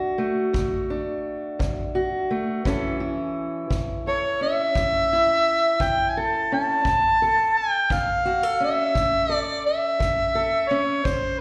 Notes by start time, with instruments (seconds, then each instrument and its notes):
Already playing: steel-string acoustic guitar F#3 A3 D4 F#4
0.18 steel-string acoustic guitar A3
0.53 steel-string acoustic guitar D3, kick
0.90 steel-string acoustic guitar D4
1.59 steel-string acoustic guitar F#3, kick
1.95 steel-string acoustic guitar F#4
2.31 steel-string acoustic guitar A3
2.65 steel-string acoustic guitar A2 E3 C#4 E4 A4, kick
3.00 steel-string acoustic guitar E4
3.70 steel-string acoustic guitar E3, kick
4.07 steel-string acoustic guitar A4, harmonica C#5
4.41 steel-string acoustic guitar C#4, harmonica E5
4.75 steel-string acoustic guitar A2, kick
5.13 steel-string acoustic guitar E4
5.80 steel-string acoustic guitar E3, harmonica G5, kick
6.09 harmonica G#5
6.17 steel-string acoustic guitar A4, harmonica A5
6.52 steel-string acoustic guitar C#4, harmonica A5
6.85 steel-string acoustic guitar A2, kick
7.22 steel-string acoustic guitar A4
7.58 harmonica G5
7.90 steel-string acoustic guitar E3, harmonica F5, kick
8.25 steel-string acoustic guitar F#4
8.43 steel-string acoustic guitar A4
8.60 steel-string acoustic guitar C#4, harmonica E5
8.94 steel-string acoustic guitar A2, kick
9.29 steel-string acoustic guitar A4, harmonica D5
9.66 harmonica E5
9.99 steel-string acoustic guitar E3, kick
10.35 steel-string acoustic guitar A4
10.69 steel-string acoustic guitar C#4, harmonica C#5
11.05 steel-string acoustic guitar G2, harmonica C5, kick